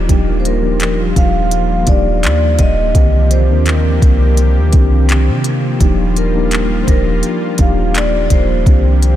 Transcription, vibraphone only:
0.40 0.46 C5 medium
0.46 0.80 A#4 medium
0.82 0.97 A#4 medium
1.17 1.90 F5 loud
1.88 2.62 D5 medium
2.60 3.27 D#5 loud
3.31 3.67 C5 medium
3.66 5.05 A#4 medium
6.17 6.78 A#4 medium
6.83 6.88 C5 medium
6.89 7.56 A#4 medium
7.61 7.93 F5 loud
7.97 8.24 D5 loud
8.26 8.31 D5 medium
8.32 9.16 C5 medium

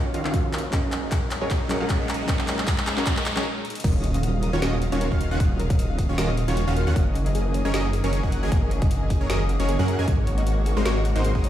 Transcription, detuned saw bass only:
0.00 0.12 D#1 medium
0.14 0.23 D#1 loud
0.25 0.71 D#1 medium
0.73 1.40 F#1 loud
1.42 1.49 F#1 loud
1.50 1.68 F#1 medium
1.70 1.78 F#1 loud
1.81 2.27 F#1 loud
2.28 2.95 F#1 loud
2.97 3.05 F#1 loud
3.06 3.34 F#1 loud
3.36 3.45 F#1 medium
3.84 4.51 D#1 loud
4.53 4.60 D#1 loud
4.62 4.90 D#1 medium
4.92 5.10 D#1 loud
5.12 5.29 D#1 loud
5.31 5.38 D#1 medium
5.40 6.07 D#1 loud
6.09 6.16 D#1 loud
6.18 6.46 D#1 medium
6.48 6.65 D#1 medium
6.67 6.85 D#1 medium
6.87 6.94 D#2 loud
6.96 7.63 F#1 loud
7.65 7.72 F#1 loud
7.74 8.02 F#1 medium
8.04 8.21 F#1 loud
8.23 8.41 F#1 loud
8.43 8.50 F#1 medium
8.52 9.19 F#1 loud
9.21 9.28 F#1 loud
9.30 9.58 F#1 loud
9.60 9.77 F#1 loud
9.79 9.97 F#2 loud
9.99 10.09 F#2 loud
10.08 10.75 G#1 loud
10.77 10.84 G#1 loud
10.86 11.14 G#1 loud
11.16 11.33 G#1 medium
11.35 11.49 G#1 loud

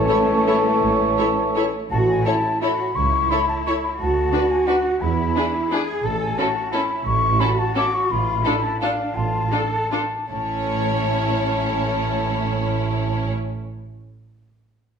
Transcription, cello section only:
0.00 1.74 A3 medium
1.91 2.23 F#4 medium
2.26 2.62 E4 soft
2.63 2.95 F#4 soft
2.96 3.97 E4 medium
4.00 5.00 F#4 medium
5.02 5.70 E4 soft
5.71 6.04 G#4 soft
6.04 6.37 A4 medium
6.38 6.73 F#4 soft
6.73 7.40 E4 soft
7.40 8.10 F#4 medium
8.10 8.45 F4 medium
8.45 8.81 E4 soft
8.81 9.15 D4 soft
9.16 9.51 F4 soft
9.52 9.91 A4 soft
9.91 9.99 F4 soft
10.30 13.28 A2 soft

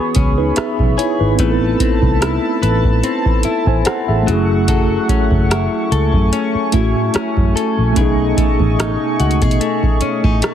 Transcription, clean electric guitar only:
0.00 1.39 E3 medium
0.00 0.56 B3 medium
0.00 0.15 C#4 medium
0.00 0.97 G#4 medium
0.16 1.48 C#4 medium
0.57 1.80 B3 medium
0.98 1.39 G#4 medium
1.39 4.27 A3 medium
1.39 2.61 B4 medium
1.80 3.03 C4 medium
2.21 3.44 E4 medium
2.62 4.36 B4 medium
3.04 3.84 C4 medium
3.45 4.71 E4 medium
3.86 4.36 C4 medium
4.27 4.68 F#3 medium
4.68 8.00 F#3 medium
4.68 5.92 A4 medium
5.09 6.32 C#4 medium
5.51 6.73 E4 medium
5.92 7.55 A4 medium
6.33 7.14 C#4 medium
6.74 8.06 E4 medium
7.15 8.37 C#4 medium
7.56 7.97 A4 medium
7.97 10.54 B2 medium
7.97 9.20 G#4 medium
8.37 9.60 A3 medium
8.79 10.01 D#4 medium
9.20 9.42 F#4 medium
9.42 10.54 G#4 medium
9.61 10.41 A3 medium
10.02 10.24 C#4 medium
10.24 10.54 D#4 soft
10.43 10.54 A3 medium

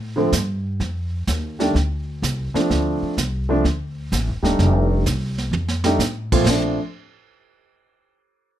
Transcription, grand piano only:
0.16 0.31 D3 medium
0.16 0.31 F3 medium
0.16 0.31 A3 medium
0.16 0.31 C4 medium
1.59 1.73 D#3 medium
1.59 1.73 G3 medium
1.59 1.73 A3 medium
1.59 1.73 D4 medium
2.54 3.14 F3 medium
2.54 3.14 A3 medium
2.54 3.14 C4 medium
2.54 3.14 D4 medium
3.49 3.62 F3 medium
3.49 3.62 A3 medium
3.49 3.63 C4 medium
3.49 3.63 D4 medium
4.42 5.02 G3 medium
4.42 5.02 A3 medium
4.42 5.03 D4 medium
4.42 5.03 D#4 medium
5.84 5.98 G3 medium
5.84 5.99 A3 medium
5.84 5.99 D4 medium
5.84 5.99 D#4 medium
6.32 6.46 A#2 medium
6.32 6.46 F3 medium
6.32 6.46 A3 medium
6.32 6.46 C4 medium
6.32 6.46 F4 medium
6.48 6.77 F3 medium
6.48 6.77 A3 soft
6.48 6.77 C4 soft
6.48 6.77 D4 medium

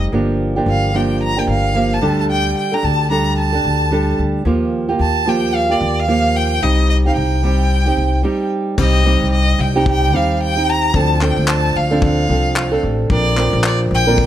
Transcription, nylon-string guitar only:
0.00 0.12 G3 soft
0.00 0.13 C4 soft
0.00 0.13 D#4 medium
0.00 0.14 G4 medium
0.12 0.56 F3 soft
0.12 0.56 A#3 medium
0.12 0.56 D4 medium
0.12 0.55 G4 medium
0.56 0.92 F3 soft
0.56 0.93 A#3 soft
0.56 0.94 D4 soft
0.56 0.94 G4 soft
0.93 1.37 F3 soft
0.93 1.36 A#3 soft
0.93 1.36 D4 soft
0.93 1.35 G4 soft
1.36 1.73 F3 soft
1.36 1.74 A#3 soft
1.36 1.74 D4 soft
1.36 1.74 G4 soft
1.74 2.01 F3 soft
1.74 2.02 A#3 medium
1.74 2.01 D4 soft
1.74 2.01 G4 medium
2.02 2.72 D3 medium
2.02 2.75 G3 medium
2.02 2.72 D4 medium
2.02 2.72 G4 medium
2.02 2.71 A4 medium
2.72 3.09 D4 soft
2.72 3.10 G4 soft
2.72 3.10 A4 soft
3.10 3.53 G3 soft
3.10 3.54 D4 soft
3.10 3.52 G4 medium
3.10 3.51 A4 medium
3.53 3.91 D4 soft
3.53 3.91 G4 soft
3.53 3.91 A4 soft
3.91 4.45 G3 medium
3.91 4.45 D4 medium
3.91 4.46 G4 medium
3.91 4.46 A4 medium
4.45 4.88 F3 soft
4.45 4.89 A#3 medium
4.45 4.88 F4 medium
4.45 4.87 G4 medium
4.89 5.25 A#3 soft
4.89 5.26 F4 soft
4.89 5.26 G4 soft
5.26 5.69 F3 soft
5.26 5.70 A#3 soft
5.26 5.69 F4 soft
5.26 5.68 G4 medium
5.70 6.07 A#3 soft
5.70 6.07 F4 soft
5.70 6.07 G4 soft
6.07 6.62 F3 medium
6.07 6.62 A#3 medium
6.07 6.62 F4 medium
6.07 6.64 G4 medium
6.62 7.05 G3 soft
6.62 7.05 C4 soft
6.62 7.05 D#4 soft
6.62 7.04 G4 medium
7.05 7.43 C4 soft
7.05 7.43 D#4 soft
7.05 7.43 G4 soft
7.43 7.86 G3 soft
7.43 7.87 C4 medium
7.43 7.86 D#4 medium
7.43 7.85 G4 medium
7.86 8.23 C4 soft
7.86 8.23 D#4 soft
7.86 8.24 G4 medium
8.23 8.77 G3 medium
8.23 8.78 C4 medium
8.23 8.79 D#4 medium
8.23 8.79 G4 medium
8.78 9.04 G3 medium
8.78 9.05 C4 medium
8.78 9.05 D#4 medium
8.78 9.06 G4 medium
9.05 9.75 G3 medium
9.05 9.76 C4 medium
9.05 9.75 D#4 medium
9.05 9.74 G4 medium
9.76 10.14 C3 medium
9.76 10.11 G3 medium
9.76 10.12 C4 medium
9.76 10.13 D#4 medium
9.76 10.13 G4 medium
10.12 10.56 G3 soft
10.12 10.56 C4 medium
10.12 10.56 D#4 medium
10.12 10.55 G4 medium
10.56 10.93 C4 soft
10.56 10.94 D#4 soft
10.56 10.94 G4 medium
10.94 11.20 F3 medium
10.94 11.20 C4 medium
10.94 11.21 D4 soft
10.94 11.21 A4 medium
11.21 11.92 F3 medium
11.21 11.91 C4 medium
11.21 11.91 D4 medium
11.21 11.90 A4 medium
11.91 12.30 D3 soft
11.91 12.27 F3 medium
11.91 12.28 C4 medium
11.91 12.29 D4 medium
11.91 12.29 A4 medium
12.28 12.72 F3 medium
12.28 12.72 C4 medium
12.28 12.72 D4 soft
12.28 12.70 A4 medium
12.72 13.09 C4 soft
12.72 13.10 D4 medium
12.72 13.10 A4 medium
13.10 13.35 F3 soft
13.10 13.36 C4 medium
13.10 13.37 D4 medium
13.10 13.37 A#4 medium
13.36 14.07 F3 medium
13.36 14.07 C4 medium
13.36 14.06 D4 medium
13.36 14.07 A#4 medium
14.07 14.26 A#2 medium
14.07 14.26 D3 medium
14.07 14.26 F3 medium
14.07 14.26 C4 medium
14.07 14.26 D4 medium
14.07 14.26 A#4 medium

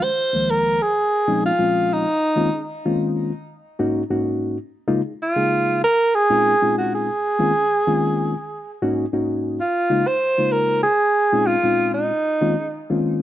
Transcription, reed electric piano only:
0.02 0.09 G#3 soft
0.02 0.09 C#4 soft
0.33 0.79 C#2 medium
0.33 0.79 D#3 medium
0.33 0.79 F3 medium
0.33 0.80 G#3 medium
0.33 0.80 A#3 medium
1.28 1.50 A#2 medium
1.28 1.50 F3 medium
1.28 1.51 G#3 medium
1.28 1.51 C4 medium
1.28 1.51 C#4 medium
1.28 1.51 D#4 medium
1.59 2.05 A#2 medium
1.59 2.05 F3 medium
1.59 2.05 G#3 medium
1.59 2.05 C4 medium
1.59 2.05 C#4 medium
1.59 2.05 F4 medium
2.36 2.49 D#3 medium
2.36 2.49 G#3 medium
2.36 2.49 A#3 medium
2.36 2.49 C4 medium
2.36 2.49 C#4 medium
2.36 2.49 F4 loud
2.85 3.31 D#3 medium
2.85 3.32 G#3 medium
2.85 3.32 A#3 medium
2.85 3.32 C4 medium
2.85 3.31 C#4 medium
2.85 3.32 F4 loud
3.79 4.02 G#2 loud
3.79 4.02 A#3 medium
3.79 4.02 C#4 medium
3.79 4.02 D#4 loud
3.79 4.02 F#4 loud
4.10 4.57 G#2 medium
4.10 4.57 A#3 medium
4.10 4.57 C#4 medium
4.10 4.57 D#4 medium
4.10 4.57 F#4 loud
4.87 5.01 C#3 loud
4.87 5.00 G#3 loud
4.87 5.01 A#3 loud
4.87 5.01 D#4 loud
4.87 5.01 F4 loud
5.36 5.82 C#3 medium
5.36 5.82 G#3 medium
5.36 5.82 A#3 medium
5.36 5.82 D#4 medium
5.36 5.83 G#4 medium
6.30 6.53 A#2 medium
6.30 6.53 G#3 medium
6.30 6.53 C4 medium
6.30 6.53 C#4 medium
6.30 6.53 D#4 medium
6.30 6.53 F4 loud
6.62 7.08 A#2 medium
6.62 7.08 G#3 medium
6.62 7.08 C4 medium
6.62 7.08 C#4 medium
6.62 7.08 D#4 medium
6.62 7.08 F4 medium
7.39 7.52 D#3 medium
7.39 7.52 G#3 medium
7.39 7.52 A#3 medium
7.39 7.52 C4 medium
7.39 7.52 C#4 medium
7.39 7.52 F4 medium
7.87 8.34 D#3 medium
7.87 8.34 G#3 medium
7.87 8.34 A#3 medium
7.87 8.34 C4 medium
7.87 8.34 C#4 medium
7.87 8.34 F4 loud
8.82 9.05 G#2 loud
8.82 9.05 A#3 medium
8.82 9.05 C#4 medium
8.82 9.05 D#4 medium
8.82 9.05 F#4 loud
9.13 9.59 G#2 medium
9.13 9.59 A#3 medium
9.13 9.59 C#4 medium
9.13 9.59 D#4 medium
9.13 9.59 F#4 medium
9.90 10.03 C#3 medium
9.90 10.03 G#3 medium
9.90 10.03 A#3 medium
9.90 10.03 D#4 medium
9.90 10.03 F4 medium
10.38 10.85 C#3 medium
10.38 10.85 G#3 medium
10.38 10.85 A#3 medium
10.38 10.84 D#4 medium
10.38 10.85 F4 medium
11.33 11.56 A#2 medium
11.33 11.56 G#3 medium
11.33 11.56 C4 medium
11.33 11.56 C#4 medium
11.33 11.56 D#4 medium
11.33 11.56 F4 medium
11.63 12.10 A#2 medium
11.63 12.10 G#3 medium
11.63 12.10 C4 medium
11.63 12.10 C#4 medium
11.63 12.10 D#4 medium
11.63 12.10 F4 medium
12.41 12.54 D#3 loud
12.41 12.54 G#3 medium
12.41 12.54 A#3 medium
12.41 12.54 C4 medium
12.41 12.54 C#4 medium
12.41 12.54 F4 loud
12.90 13.22 D#3 medium
12.90 13.22 G#3 medium
12.90 13.22 A#3 medium
12.90 13.22 C4 medium
12.90 13.22 C#4 medium
12.90 13.22 F4 medium

